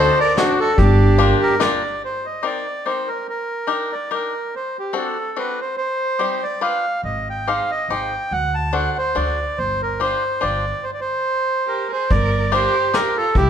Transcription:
0.00 0.18 C4 medium
0.00 0.18 D4 medium
0.00 0.18 D#4 medium
0.00 0.18 F#4 medium
0.00 0.17 A4 medium
0.00 0.18 A4 medium
0.00 0.19 C5 loud
0.20 0.36 A#4 medium
0.20 0.38 D5 loud
0.37 0.59 C4 medium
0.37 0.59 D4 medium
0.37 0.57 D4 medium
0.37 0.59 D#4 medium
0.37 0.60 F#4 medium
0.37 0.59 F#4 soft
0.37 0.59 A4 medium
0.37 snare medium
0.37 closed hi-hat medium
0.60 0.76 F#4 medium
0.60 0.78 A4 medium
0.77 1.31 G1 loud
0.77 1.55 D4 medium
0.77 1.55 G4 medium
0.77 kick medium
0.77 closed hi-hat soft
1.18 1.41 A#3 medium
1.18 1.41 D4 medium
1.18 1.40 F4 medium
1.18 1.41 G4 medium
1.18 1.41 A#4 medium
1.18 closed hi-hat medium
1.43 1.61 A#4 loud
1.60 1.82 A#3 medium
1.60 1.82 D4 medium
1.60 1.82 F4 medium
1.60 1.82 G4 medium
1.60 1.82 A#4 medium
1.60 2.03 D5 medium
1.60 snare medium
1.60 closed hi-hat medium
2.05 2.26 C5 medium
2.26 2.44 D#5 soft
2.43 2.66 C4 soft
2.43 2.66 D#4 soft
2.43 2.66 G4 soft
2.43 2.66 A#4 medium
2.43 2.87 D5 medium
2.86 3.08 C4 soft
2.86 3.08 D#4 soft
2.86 3.08 G4 soft
2.86 3.09 A#4 soft
2.86 3.09 C5 medium
3.08 3.27 A#4 medium
3.29 3.94 A#4 medium
3.67 3.90 D4 soft
3.67 3.91 D#4 soft
3.67 3.91 G4 soft
3.67 3.91 A#4 medium
3.93 4.11 D5 medium
4.11 4.33 D4 soft
4.11 4.33 D#4 soft
4.11 4.34 G4 soft
4.11 4.33 A#4 soft
4.11 4.55 A#4 medium
4.56 4.77 C5 medium
4.79 4.96 G4 medium
4.93 5.16 C4 medium
4.93 5.16 D4 soft
4.93 5.16 F#4 soft
4.93 5.17 A4 medium
4.93 5.38 A4 medium
5.36 5.59 C4 soft
5.36 5.59 D4 soft
5.36 5.59 F#4 soft
5.36 5.59 A4 soft
5.36 5.60 B4 medium
5.61 5.76 C5 medium
5.77 6.44 C5 medium
6.19 6.42 G3 medium
6.19 6.42 C4 soft
6.19 6.42 D#4 soft
6.19 6.42 G4 soft
6.19 6.42 C5 soft
6.43 6.63 D5 medium
6.61 6.85 D4 soft
6.61 6.85 F4 soft
6.61 6.85 G4 soft
6.61 6.85 B4 soft
6.61 7.01 F5 medium
7.03 7.59 G#1 medium
7.03 7.28 D#5 medium
7.30 7.48 G5 medium
7.48 7.70 D#4 soft
7.48 7.70 G4 soft
7.48 7.70 G#4 soft
7.48 7.70 C5 medium
7.48 7.71 F5 medium
7.71 7.90 D#5 medium
7.88 8.16 G#1 medium
7.88 8.13 D#4 soft
7.88 8.13 G4 soft
7.88 8.13 G#4 soft
7.88 8.13 C5 soft
7.88 8.33 G5 medium
8.31 8.86 D2 medium
8.31 8.55 F#5 medium
8.55 8.74 A5 medium
8.73 8.96 D4 medium
8.73 8.96 F#4 soft
8.73 8.97 A4 soft
8.73 8.96 C5 medium
8.73 8.97 F#5 medium
8.98 9.17 C5 medium
9.15 9.43 D2 medium
9.15 9.38 D4 soft
9.15 9.38 F#4 soft
9.15 9.38 A4 soft
9.15 9.39 C5 medium
9.15 9.59 D5 medium
9.58 10.13 G1 medium
9.58 9.81 C5 medium
9.82 10.01 A#4 medium
10.00 10.23 D4 soft
10.00 10.23 F4 soft
10.00 10.23 G4 soft
10.00 10.23 C5 medium
10.00 10.44 C5 medium
10.41 10.70 G1 medium
10.41 10.64 D4 soft
10.41 10.64 F4 soft
10.41 10.64 G4 soft
10.41 10.64 C5 soft
10.41 10.85 D5 medium
10.84 10.91 C5 medium
10.94 11.00 D5 medium
11.01 11.88 C5 medium
11.67 11.89 G4 medium
11.67 11.92 A#4 medium
11.91 12.08 G#4 medium
11.91 12.11 C5 medium
12.10 12.65 G1 medium
12.10 12.49 A#4 medium
12.10 12.53 D5 medium
12.10 kick medium
12.10 closed hi-hat soft
12.52 12.75 D4 medium
12.52 12.75 F4 medium
12.52 12.75 G4 medium
12.52 12.92 G4 medium
12.52 12.75 A#4 medium
12.52 12.95 C5 medium
12.52 closed hi-hat medium
12.94 13.16 D4 soft
12.94 13.16 F4 soft
12.94 13.16 G4 soft
12.94 13.15 G4 medium
12.94 13.16 A#4 medium
12.94 13.17 A#4 medium
12.94 snare medium
12.94 closed hi-hat soft
13.17 13.35 F4 medium
13.17 13.36 A4 medium
13.35 13.50 C2 loud
13.35 13.50 E4 medium
13.35 13.50 G4 medium
13.35 kick medium
13.35 closed hi-hat soft

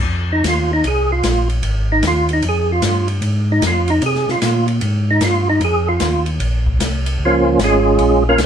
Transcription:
0.05 0.43 F2 medium
0.32 0.45 D#4 medium
0.44 0.83 D#2 medium
0.44 snare medium
0.44 hi-hat pedal medium
0.44 ride medium
0.48 0.72 F4 medium
0.73 0.85 D#4 medium
0.83 1.22 C2 medium
0.83 ride medium
0.87 1.11 G#4 medium
1.12 1.48 F4 medium
1.23 1.62 A#1 medium
1.23 snare medium
1.23 hi-hat pedal medium
1.23 ride medium
1.49 ride soft
1.63 2.02 G#1 medium
1.63 ride medium
1.92 2.04 D#4 medium
2.03 2.42 D#2 medium
2.03 snare medium
2.03 hi-hat pedal soft
2.03 ride medium
2.07 2.31 F4 medium
2.29 ride soft
2.33 2.45 D#4 medium
2.42 2.81 F2 medium
2.42 ride medium
2.49 2.71 G#4 medium
2.72 3.08 F4 medium
2.82 3.21 G2 medium
2.82 snare medium
2.82 hi-hat pedal medium
2.82 ride medium
3.08 ride soft
3.22 3.61 G#2 medium
3.22 ride medium
3.52 3.64 D#4 medium
3.62 4.01 F2 medium
3.62 snare medium
3.62 hi-hat pedal medium
3.62 ride medium
3.67 3.90 F4 medium
3.88 4.03 D#4 medium
3.88 ride soft
4.02 4.26 C3 medium
4.02 ride medium
4.06 4.30 G#4 medium
4.15 snare soft
4.29 4.35 C3 soft
4.29 4.67 F4 medium
4.29 snare soft
4.42 4.81 A#2 medium
4.42 snare medium
4.42 hi-hat pedal medium
4.42 ride medium
4.68 ride soft
4.81 5.20 G#2 medium
4.81 ride medium
5.11 5.23 D#4 medium
5.21 5.60 G2 medium
5.21 5.48 F4 loud
5.21 snare medium
5.21 hi-hat pedal medium
5.21 ride medium
5.49 5.62 D#4 medium
5.60 5.99 F2 medium
5.60 ride medium
5.64 5.88 G#4 medium
5.89 6.25 F4 medium
6.00 6.40 D#2 medium
6.00 snare medium
6.00 hi-hat pedal medium
6.00 ride medium
6.26 ride soft
6.40 6.79 A#1 medium
6.40 ride medium
6.66 kick medium
6.79 7.18 C2 medium
6.79 snare medium
6.79 hi-hat pedal medium
6.79 ride medium
7.06 ride medium
7.19 7.58 C#2 medium
7.25 7.60 F3 medium
7.25 7.60 A#3 medium
7.25 7.60 C#4 medium
7.25 7.60 F4 medium
7.58 7.98 G#1 medium
7.58 snare medium
7.58 hi-hat pedal medium
7.58 ride medium
7.64 8.24 G#3 medium
7.64 8.24 C#4 medium
7.64 8.24 F4 medium
7.64 8.24 G#4 medium
7.98 8.37 A#1 medium
7.98 ride medium
8.29 8.41 A#3 medium
8.29 8.41 C#4 medium
8.29 8.41 F4 medium
8.29 8.41 A#4 medium
8.38 8.46 C2 medium
8.38 snare medium
8.38 hi-hat pedal medium
8.38 ride medium

